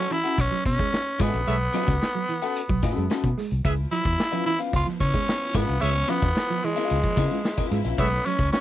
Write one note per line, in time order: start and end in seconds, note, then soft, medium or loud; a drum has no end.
0.00 0.14 C#4 loud
0.00 0.15 C#4 medium
0.00 0.15 F#4 medium
0.00 0.14 A4 medium
0.00 0.14 E5 medium
0.11 0.22 E3 medium
0.11 0.42 E4 loud
0.11 open hi-hat soft
0.24 0.38 C#4 soft
0.24 0.38 F#4 medium
0.24 0.38 A4 medium
0.24 0.38 F#5 medium
0.24 closed hi-hat medium
0.38 0.48 B1 medium
0.38 0.65 C#4 loud
0.38 kick medium
0.38 closed hi-hat medium
0.51 0.62 F#3 medium
0.51 snare soft
0.65 0.76 B2 loud
0.65 1.23 C#4 loud
0.65 muted clean electric guitar stroke soft
0.65 kick medium
0.65 closed hi-hat medium
0.79 0.90 G#3 medium
0.79 kick loud
0.79 closed hi-hat medium
0.94 snare loud
1.07 closed hi-hat soft
1.19 1.30 G#2 medium
1.19 1.30 G#3 medium
1.19 3.38 B3 loud
1.19 1.40 C#4 medium
1.19 1.40 F#4 medium
1.19 1.40 A4 loud
1.19 1.41 E5 medium
1.19 kick medium
1.19 snare soft
1.19 closed hi-hat medium
1.33 1.44 A#1 medium
1.33 closed hi-hat medium
1.47 1.67 B1 loud
1.47 1.58 G#3 medium
1.47 1.56 A4 loud
1.47 1.55 C#5 loud
1.47 1.56 E5 loud
1.47 closed hi-hat loud
1.62 closed hi-hat soft
1.74 1.85 F#3 medium
1.74 1.94 C#4 medium
1.74 1.95 F#4 medium
1.74 1.95 A4 medium
1.74 1.95 E5 medium
1.74 closed hi-hat medium
1.88 1.98 C#2 medium
1.88 muted clean electric guitar stroke soft
1.88 kick medium
1.88 snare soft
1.88 closed hi-hat medium
2.02 muted clean electric guitar stroke soft
2.02 snare loud
2.15 2.26 F#3 medium
2.29 2.40 E3 medium
2.29 closed hi-hat medium
2.42 2.60 C#4 medium
2.42 2.60 F#4 medium
2.42 2.60 A4 medium
2.42 2.59 F#5 medium
2.42 closed hi-hat medium
2.56 closed hi-hat medium
2.69 2.80 B1 medium
2.69 2.80 F#3 medium
2.69 kick medium
2.69 closed hi-hat soft
2.83 2.93 A2 loud
2.83 3.03 C#4 medium
2.83 3.03 F#4 medium
2.83 3.03 A4 medium
2.83 3.04 E5 medium
2.83 muted clean electric guitar stroke soft
2.83 kick loud
2.83 snare soft
2.83 closed hi-hat medium
2.96 3.07 F#2 medium
2.96 3.07 G#3 medium
2.96 closed hi-hat soft
3.10 3.27 C#4 medium
3.10 3.27 F#4 medium
3.10 3.28 A4 medium
3.10 3.28 E5 medium
3.10 snare loud
3.24 3.33 B2 medium
3.24 kick medium
3.24 closed hi-hat soft
3.38 3.48 G#3 medium
3.38 snare soft
3.38 open hi-hat medium
3.51 3.61 C2 medium
3.51 closed hi-hat medium
3.64 3.84 C#2 loud
3.64 7.95 F3 medium
3.64 3.75 G#3 medium
3.64 7.95 B3 medium
3.64 8.61 E4 medium
3.64 3.73 G#4 loud
3.64 3.73 B4 loud
3.64 3.73 E5 loud
3.64 kick loud
3.64 closed hi-hat medium
3.91 4.02 F3 medium
3.91 4.42 E4 loud
3.91 closed hi-hat medium
4.05 4.15 E2 medium
4.05 muted clean electric guitar stroke soft
4.05 kick medium
4.05 closed hi-hat medium
4.19 muted clean electric guitar stroke soft
4.19 snare loud
4.32 4.43 F3 medium
4.32 4.50 C#4 medium
4.32 4.50 F4 medium
4.32 4.49 B4 medium
4.32 4.49 E5 medium
4.32 closed hi-hat soft
4.46 4.57 E3 medium
4.46 4.58 E4 loud
4.46 closed hi-hat medium
4.59 4.73 C#4 soft
4.59 4.73 F4 soft
4.59 4.73 B4 medium
4.59 4.73 F5 medium
4.59 closed hi-hat medium
4.73 4.83 C#2 medium
4.73 4.88 F4 loud
4.73 kick medium
4.73 closed hi-hat medium
4.86 4.97 F3 medium
4.86 snare soft
4.86 closed hi-hat soft
5.00 5.11 C#3 loud
5.00 5.58 C#4 loud
5.00 muted clean electric guitar stroke soft
5.00 kick medium
5.00 closed hi-hat medium
5.14 5.25 G#3 medium
5.14 kick medium
5.14 closed hi-hat medium
5.29 snare loud
5.42 closed hi-hat soft
5.54 5.64 G#2 medium
5.54 5.65 G#3 medium
5.54 5.83 B3 medium
5.54 5.74 C#4 medium
5.54 5.75 F4 loud
5.54 5.75 B4 medium
5.54 5.75 E5 loud
5.54 kick medium
5.54 snare soft
5.54 closed hi-hat medium
5.68 5.78 C2 medium
5.68 closed hi-hat medium
5.81 6.02 C#2 loud
5.81 5.92 G#3 medium
5.81 6.11 C#4 loud
5.81 5.90 G#4 medium
5.81 5.90 B4 medium
5.81 5.90 E5 loud
5.81 closed hi-hat medium
5.96 closed hi-hat soft
6.08 6.20 F3 medium
6.08 6.66 B3 loud
6.08 6.25 C#4 medium
6.08 6.26 F4 medium
6.08 6.26 B4 medium
6.08 6.26 E5 loud
6.08 closed hi-hat medium
6.22 6.32 E2 medium
6.22 muted clean electric guitar stroke soft
6.22 kick medium
6.22 snare soft
6.22 closed hi-hat medium
6.36 muted clean electric guitar stroke soft
6.36 snare loud
6.49 6.61 F3 medium
6.49 closed hi-hat soft
6.63 6.74 E3 medium
6.63 7.72 G#3 loud
6.63 closed hi-hat medium
6.76 6.97 C#4 medium
6.76 6.97 F4 medium
6.76 6.97 B4 medium
6.76 6.96 F5 medium
6.76 snare soft
6.76 closed hi-hat medium
6.90 7.01 C#2 medium
6.90 closed hi-hat medium
7.03 7.15 F3 medium
7.03 kick medium
7.03 closed hi-hat soft
7.17 7.27 C#3 loud
7.17 7.37 C#4 medium
7.17 7.38 F4 medium
7.17 7.38 B4 medium
7.17 7.38 E5 medium
7.17 kick loud
7.17 snare soft
7.17 closed hi-hat medium
7.31 7.42 G#3 medium
7.31 closed hi-hat medium
7.45 snare loud
7.58 7.78 C#4 medium
7.58 7.78 F4 medium
7.58 7.78 B4 medium
7.58 7.78 E5 medium
7.58 kick medium
7.58 closed hi-hat soft
7.71 7.81 G#2 medium
7.71 7.82 G#3 medium
7.71 snare soft
7.71 closed hi-hat medium
7.84 7.95 A#1 medium
7.84 7.99 C#4 medium
7.84 7.99 F4 medium
7.84 7.98 B4 medium
7.84 7.98 E5 medium
7.84 closed hi-hat medium
7.98 8.18 B1 loud
7.98 8.10 G#3 medium
7.98 8.61 A3 medium
7.98 8.27 B3 loud
7.98 8.61 C#4 medium
7.98 8.07 A4 loud
7.98 8.07 C#5 loud
7.98 8.07 E5 loud
7.98 kick loud
7.98 closed hi-hat medium
8.12 closed hi-hat soft
8.26 8.37 F#3 medium
8.26 8.52 C#4 loud
8.26 closed hi-hat medium
8.39 8.49 C#2 medium
8.39 muted clean electric guitar stroke soft
8.39 kick medium
8.39 closed hi-hat medium
8.52 8.61 C#4 loud
8.52 muted clean electric guitar stroke soft
8.52 snare loud